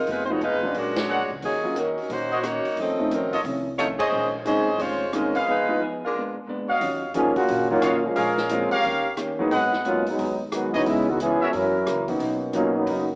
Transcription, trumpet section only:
1.08 1.23 G#4 medium
1.08 1.23 A#4 medium
1.08 1.23 D5 medium
1.08 1.23 F#5 medium
2.31 2.39 F#4 medium
2.31 2.39 A#4 medium
2.31 2.39 C#5 medium
2.31 2.39 D#5 medium
3.32 3.40 F4 medium
3.32 3.40 A4 medium
3.32 3.40 C#5 medium
3.32 3.40 D#5 medium
4.00 4.08 G#4 medium
4.00 4.08 C5 medium
4.00 4.08 C#5 medium
4.00 4.08 D#5 medium
5.34 5.78 G#4 medium
5.34 5.78 B4 medium
5.34 5.78 D#5 medium
5.34 5.78 F5 medium
6.69 7.12 F#4 medium
6.69 7.12 C#5 medium
6.69 7.12 D#5 medium
6.69 7.12 F5 medium
7.82 7.97 F#4 medium
7.82 7.97 C#5 medium
7.82 7.97 D#5 medium
7.82 7.97 F5 medium
8.16 8.67 G#4 medium
8.16 8.67 A#4 medium
8.16 8.67 C#5 medium
8.16 8.67 F5 medium
8.71 9.15 G4 medium
8.71 9.15 A#4 medium
8.71 9.15 C#5 medium
8.71 9.15 F5 loud
9.51 10.02 G#4 medium
9.51 10.02 B4 medium
9.51 10.02 D#5 medium
9.51 10.02 F#5 medium
10.73 10.81 G#4 medium
10.73 10.82 B4 medium
10.73 10.81 C#5 medium
10.73 10.81 D#5 loud
11.41 11.49 F#4 medium
11.41 11.49 A#4 medium
11.41 11.49 C#5 medium
11.41 11.49 E5 medium

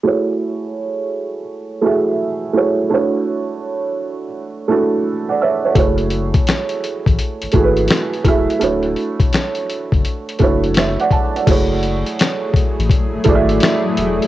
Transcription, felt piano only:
0.03 1.37 A3 medium
0.03 1.37 E4 medium
0.03 1.38 F#4 medium
0.03 1.38 G#4 medium
0.03 1.39 C#5 medium
1.81 2.49 A3 medium
1.81 2.49 E4 medium
1.81 2.50 F#4 medium
1.81 2.50 G#4 medium
1.86 2.51 E5 medium
2.53 2.87 A3 medium
2.53 2.87 E4 medium
2.53 2.88 F#4 medium
2.53 2.89 G#4 medium
2.57 2.89 C#5 medium
2.90 4.23 A3 medium
2.90 4.23 D4 medium
2.90 4.24 E4 medium
2.90 4.25 F#4 medium
2.94 4.25 C#5 medium
4.68 5.35 A3 medium
4.68 5.35 D4 medium
4.68 5.36 E4 medium
4.68 5.36 F#4 medium
4.68 5.06 A4 medium
5.29 5.40 D5 medium
5.29 5.40 F#5 medium
5.42 5.63 C#5 medium
5.42 5.63 E5 medium
5.65 5.99 A4 soft
5.65 5.78 C#5 medium
5.75 7.08 A3 medium
5.75 7.09 E4 medium
5.75 7.09 F#4 medium
5.75 7.10 G#4 medium
5.79 7.10 C#5 medium
7.53 8.20 A3 medium
7.53 8.21 E4 medium
7.53 8.21 F#4 medium
7.53 8.21 G#4 medium
7.57 7.64 A4 medium
7.64 8.25 B4 medium
8.24 8.58 A3 medium
8.24 8.59 E4 medium
8.24 8.59 F#4 medium
8.24 8.60 G#4 medium
8.28 8.60 E5 medium
8.60 9.94 A3 medium
8.60 9.94 D4 medium
8.60 9.95 E4 medium
8.60 9.95 F#4 medium
8.64 9.96 C#5 medium
10.39 11.06 A3 medium
10.39 11.07 D4 medium
10.39 11.07 E4 medium
10.39 11.07 F#4 medium
10.43 10.76 C#5 medium
10.77 10.99 C#5 soft
10.77 10.99 E5 medium
11.00 11.11 D5 medium
11.00 11.11 F#5 medium
11.12 11.34 F#5 medium
11.12 11.34 A5 medium
11.36 11.70 D5 soft
11.36 11.69 F#5 soft
11.46 12.80 A3 medium
11.46 12.80 E4 medium
11.46 12.81 F#4 medium
11.46 12.81 G#4 medium
11.51 12.82 C#5 medium
13.24 14.25 A3 medium
13.24 14.25 E4 medium
13.24 14.26 F#4 medium
13.24 14.27 G#4 medium
13.29 13.36 D5 medium
13.35 14.27 E5 medium

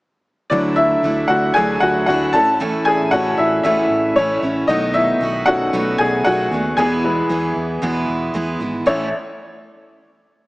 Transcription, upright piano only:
0.50 1.25 E3 soft
0.50 1.26 F#3 soft
0.50 0.76 D4 medium
0.50 0.77 D5 medium
0.76 1.26 E4 medium
0.76 1.30 E5 medium
1.28 1.54 F#4 medium
1.28 1.53 F#5 medium
1.54 1.80 G#4 medium
1.54 1.79 G#5 medium
1.80 2.06 F#4 medium
1.80 2.05 F#5 medium
2.06 2.32 F#4 medium
2.06 2.34 F#5 medium
2.33 2.83 A4 medium
2.33 2.87 A5 loud
2.85 3.11 G#4 medium
2.85 3.13 G#5 medium
3.11 3.87 E3 soft
3.11 3.87 A3 soft
3.11 3.87 C#4 soft
3.11 3.37 F#4 medium
3.11 3.36 F#5 medium
3.38 3.63 E4 medium
3.38 3.62 E5 medium
3.63 4.14 E4 medium
3.63 4.18 E5 medium
4.16 4.54 C#4 medium
4.16 4.53 C#5 medium
4.67 4.93 D#4 medium
4.67 4.95 D#5 medium
4.94 5.44 E4 medium
4.94 5.48 E5 medium
5.46 6.21 D#3 medium
5.46 6.21 A3 soft
5.46 6.22 C#4 medium
5.46 5.96 F#4 medium
5.46 6.00 F#5 loud
5.98 6.06 G#4 medium
5.98 6.04 G#5 medium
6.24 6.74 F#4 medium
6.24 6.73 F#5 medium
6.77 8.31 G#4 medium
6.77 8.30 G#5 medium
7.03 7.78 E3 medium
7.03 7.78 G#3 soft
7.03 7.79 B3 medium
8.86 9.11 A1 medium
8.86 9.11 A3 medium
8.86 9.11 E4 medium
8.86 9.11 C#5 medium

